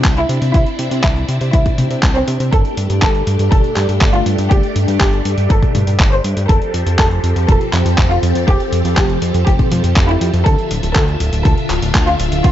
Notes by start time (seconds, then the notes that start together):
Already playing: C4 D4 E4
0.05 C2, kick, clap, closed hi-hat
0.17 E4, closed hi-hat
0.29 C3, closed hi-hat
0.42 C3, closed hi-hat
0.54 C2 E4, kick, closed hi-hat
0.66 closed hi-hat
0.79 C3, closed hi-hat
0.91 C3, closed hi-hat
1.04 C2 E4, kick, clap, closed hi-hat
1.16 closed hi-hat
1.29 C3, closed hi-hat
1.41 C3, closed hi-hat
1.53 C2 E4, kick, closed hi-hat
1.66 kick, closed hi-hat, high tom
1.78 C3, closed hi-hat, high tom
1.91 C3, closed hi-hat
2.03 C2, kick, clap, closed hi-hat
2.15 C4, closed hi-hat
2.28 C3, closed hi-hat
2.40 C3, closed hi-hat
2.52 G1 A3 D4 G4 A4, kick, closed hi-hat
2.65 closed hi-hat
2.77 G2, closed hi-hat
2.90 G2, closed hi-hat
3.02 G1 A4, kick, clap, closed hi-hat
3.15 closed hi-hat
3.27 G2, closed hi-hat
3.39 G2, closed hi-hat
3.52 G1 A4, kick, closed hi-hat, high tom
3.64 closed hi-hat
3.76 G2, clap, closed hi-hat
3.89 G2, closed hi-hat
4.01 G1, kick, clap, closed hi-hat
4.14 F4, closed hi-hat
4.26 G2, closed hi-hat
4.38 G2, closed hi-hat
4.51 G1 G4, kick, closed hi-hat
4.63 closed hi-hat
4.76 G2, closed hi-hat
4.88 G2, closed hi-hat
5.01 G1 G4, kick, clap, closed hi-hat
5.13 closed hi-hat
5.25 G2, closed hi-hat
5.38 G2, closed hi-hat
5.50 G1 A4, kick, closed hi-hat
5.62 kick, closed hi-hat, high tom
5.75 G2, closed hi-hat, high tom
5.87 G2, closed hi-hat
6.00 G1, kick, clap, closed hi-hat
6.12 C5, closed hi-hat
6.24 G2, closed hi-hat
6.37 G2, closed hi-hat
6.49 F1 F3 C4 G4 A4, kick, closed hi-hat
6.62 closed hi-hat
6.74 F2, closed hi-hat
6.86 F2, closed hi-hat
6.99 F1 A4, kick, clap, closed hi-hat
7.11 closed hi-hat
7.24 F2, closed hi-hat
7.36 F2, closed hi-hat
7.48 F1 A4, kick, closed hi-hat, high tom
7.61 closed hi-hat
7.73 F2, clap, closed hi-hat
7.85 F2, closed hi-hat
7.98 F1, kick, clap, closed hi-hat
8.10 F4, closed hi-hat
8.23 F2, closed hi-hat
8.35 F2, closed hi-hat
8.48 F1 G4, kick, closed hi-hat
8.60 closed hi-hat
8.72 F2, closed hi-hat
8.85 F2, closed hi-hat
8.97 F1 G4, kick, clap, closed hi-hat
9.10 closed hi-hat
9.22 F2, closed hi-hat
9.34 F2, closed hi-hat
9.47 F1 G4, kick, closed hi-hat
9.59 kick, closed hi-hat, high tom
9.71 F2, closed hi-hat, high tom
9.84 F2, closed hi-hat
9.96 F1, kick, clap, closed hi-hat
10.09 E4, closed hi-hat
10.21 F2, closed hi-hat
10.34 F2, closed hi-hat
10.46 D2 D3 D4 F4 A4 E5, kick, closed hi-hat
10.58 closed hi-hat
10.71 D1, closed hi-hat
10.83 D1, closed hi-hat
10.95 D2 A4, kick, clap, closed hi-hat
11.08 closed hi-hat
11.20 D1, closed hi-hat
11.33 D1, closed hi-hat
11.45 D2 A4, kick, closed hi-hat, high tom
11.58 closed hi-hat
11.70 D1, clap, closed hi-hat
11.82 D1, closed hi-hat
11.95 D2, kick, clap, closed hi-hat
12.07 F4, closed hi-hat
12.19 D1, closed hi-hat
12.32 D1, closed hi-hat
12.44 D2 F4, kick, closed hi-hat, high tom